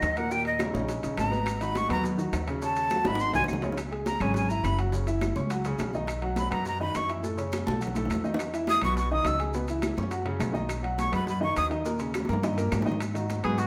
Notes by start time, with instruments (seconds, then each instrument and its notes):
Already playing: grand piano D#3 D#4 F#4, flute D#5
0.02 upright bass D#2, high bongo, low bongo, high timbale, low timbale, claves, maracas
0.17 grand piano A#2 A#3 A#4, flute F#5, high bongo, high conga, high timbale, maracas
0.30 grand piano A#2 A#3 A#4, flute G5, high bongo, high conga, maracas
0.45 flute D#5, high bongo, high conga, high timbale
0.59 grand piano C#3 C#4 D#4, high bongo, high conga, high timbale, low timbale, claves, maracas
0.73 upright bass A#1, grand piano C#3 C#4 D#4, high conga, maracas
0.88 high bongo, high conga, high timbale, maracas
1.03 upright bass A#1, grand piano C#3 C#4 D#4, high bongo, high conga, high timbale, maracas
1.17 upright bass G#1, flute A#5, high bongo, low bongo, high conga, high timbale, low timbale, claves, maracas
1.32 grand piano B2 B3 B4, high bongo, high conga, maracas
1.46 high bongo, high conga, high timbale, claves, maracas
1.61 grand piano D#3 D#4 F#4, flute B5, high bongo, high conga, high timbale, maracas
1.75 flute C#6, high bongo, high conga, high timbale, low timbale, maracas
1.89 upright bass D#2, grand piano B2 B3 B4, flute A#5, low conga, high timbale, claves, maracas
2.04 high bongo, high conga, low conga, maracas
2.18 grand piano D#3 D#4 F#4, high bongo, high conga, maracas
2.33 upright bass D#2, high bongo, low bongo, high timbale, low timbale, claves, maracas
2.47 grand piano C#3 C#4 C#5, high bongo, high conga, high timbale, maracas
2.62 grand piano C#3 C#4 C#5, flute A5, high bongo, high conga, maracas
2.76 high bongo, high conga, high timbale, maracas
2.90 grand piano F#3 F#4 A4, high bongo, high conga, high timbale, low timbale, claves, maracas
3.05 upright bass G#1, grand piano D#3 D#4 F#4, flute B5, high bongo, high conga, high timbale, maracas
3.15 high bongo
3.19 flute C6, high conga, maracas
3.33 upright bass C2, grand piano D#3 D#4 F#4, flute G#5, low bongo, high conga, low timbale, maracas
3.44 low bongo
3.48 upright bass C#2, high conga, low timbale, claves, maracas
3.53 low bongo
3.62 grand piano C#3 C#4 C#5, high conga, low timbale, maracas
3.72 low bongo
3.77 high bongo, high conga, high timbale, claves, maracas
3.91 grand piano G#3 G#4 G#5, high bongo, high conga, high timbale
4.06 flute A#5, high bongo, high conga, high timbale, low timbale, maracas
4.20 upright bass G#1, grand piano C#3 C#4 C#5, flute G#5, low conga, high timbale, claves, maracas
4.34 flute G#5, high bongo, high conga, low conga, maracas
4.49 grand piano E3 E4 E5, flute A#5, high bongo, high conga, maracas
4.64 upright bass F#1, flute B5, high bongo, low bongo, high conga, high timbale, low timbale, claves, maracas
4.78 grand piano F#3 F#4 F#5, high bongo, high conga, high timbale, maracas
4.92 grand piano C#3 C#4 C#5, high bongo, high conga, maracas
5.07 grand piano E3 E4 E5, high bongo, high conga, high timbale, maracas
5.21 high bongo, high conga, high timbale, low timbale, claves, maracas
5.36 upright bass C#2, grand piano C#4 C#5 C#6, high conga, maracas
5.50 grand piano F#3 F#4 F#5, high bongo, high conga, high timbale, maracas
5.65 grand piano C#3 C#4 C#5, high bongo, high timbale, maracas
5.79 upright bass B1, high bongo, low bongo, high conga, high timbale, low timbale, claves, maracas
5.93 grand piano D#3 D#4 D#5, high bongo, high conga, maracas
6.07 high bongo, high conga, high timbale, claves, maracas
6.22 grand piano F#3 F#4 F#5, high bongo, high conga, high timbale
6.36 flute B5, high bongo, high conga, high timbale, low timbale, maracas
6.50 upright bass F#2, grand piano B2 B3 B4, flute A#5, low conga, high timbale, claves, maracas
6.65 flute A#5, high bongo, high conga, maracas
6.80 grand piano D#3 D#4 D#5, flute B5, high bongo, high conga
6.94 upright bass F#2, flute C#6, high bongo, low bongo, high conga, high timbale, low timbale, claves, maracas
7.09 grand piano E3 E4 E5, high bongo, high conga, high timbale, maracas
7.23 grand piano A2 A3 A4, high bongo, high conga, maracas
7.37 grand piano C#3 C#4 C#5, high bongo, high conga, high timbale, maracas
7.52 high bongo, high conga, high timbale, low timbale, claves, maracas
7.66 upright bass B1, grand piano A3 A4 A5, high bongo, high conga, maracas
7.80 grand piano F#3 F#4 F#5, high conga, high timbale, maracas
7.87 low bongo
7.94 grand piano A2 A3 A4, low bongo, high conga, high timbale, maracas
8.05 low bongo
8.10 upright bass E2, high conga, high timbale, low timbale, claves, maracas
8.15 low bongo
8.24 grand piano D#3 D#4 D#5, high conga, maracas
8.34 low bongo
8.39 high bongo, high conga, high timbale, claves, maracas
8.53 grand piano E3 E4 E5, high bongo, high conga, high timbale, maracas
8.67 flute D#6, high bongo, high conga, high timbale, low timbale, maracas
8.81 upright bass B1, grand piano B2 B3 B4, flute C#6, low conga, high timbale, claves, maracas
8.97 flute C#6, high bongo, maracas
9.11 grand piano D#3 D#4 D#5, flute D#6, high bongo, high conga
9.25 upright bass C#2, flute E6, high bongo, low bongo, high conga, high timbale, low timbale, claves, maracas
9.39 grand piano G#3 G#4 G#5, high bongo, high conga, high timbale, maracas
9.54 grand piano B2 B3 B4, high bongo, high conga, maracas
9.68 grand piano E3 E4 E5, high bongo, high conga, high timbale, maracas
9.82 high bongo, high conga, high timbale, low timbale, claves, maracas
9.97 upright bass F#2, grand piano C#4 C#5 C#6, high conga, maracas
10.11 grand piano F#3 F#4 F#5, high bongo, high conga, high timbale, maracas
10.25 grand piano C#3 C#4 C#5, high bongo, high conga, high timbale
10.40 upright bass B1, high bongo, low bongo, high conga, high timbale, low timbale, claves, maracas
10.53 grand piano D#3 D#4 D#5, high bongo, high conga, maracas
10.69 high bongo, high conga, high timbale, claves, maracas
10.83 grand piano F#3 F#4 F#5, high bongo, high conga, high timbale
10.98 flute C#6, high bongo, high conga, high timbale, low timbale, maracas
11.12 upright bass F#2, grand piano B2 B3 B4, flute B5, low conga, high timbale, claves, maracas
11.27 flute B5, high bongo, high conga, low conga, maracas
11.41 grand piano D#3 D#4 D#5, flute C#6, high bongo, high conga
11.56 upright bass D#2, flute D#6, high bongo, low bongo, high conga, high timbale, low timbale, claves, maracas
11.70 grand piano D#3 D#4 D#5, high bongo, high conga, high timbale, maracas
11.84 grand piano A#2 A#3 A#4, high bongo, high conga, maracas
11.99 grand piano C#3 C#4 C#5, high bongo, high timbale, maracas
12.14 high bongo, high conga, high timbale, low timbale, claves, maracas
12.25 grand piano A#3, high bongo
12.29 upright bass G2, grand piano A#4 A#5, high conga, maracas
12.33 low bongo
12.43 grand piano D#3 D#4 D#5, high bongo, high conga, high timbale, maracas
12.53 grand piano A#2 A#3, low bongo
12.58 grand piano A#4, high conga, high timbale, maracas
12.72 upright bass G#2, low bongo, high conga, high timbale, low timbale, claves, maracas
12.82 grand piano D#3 D#4 D#5, low bongo
12.86 high conga, maracas
12.92 low bongo
13.00 high bongo, high conga, high timbale, claves, maracas
13.14 grand piano D#3 D#4 F#4, high bongo, high conga, high timbale, maracas
13.29 high bongo, high conga, high timbale, low timbale, maracas
13.43 upright bass G#2, grand piano B2 B3 B4, tenor saxophone G#4, low conga, high timbale, claves, maracas
13.58 tenor saxophone F#4, high bongo, high conga, maracas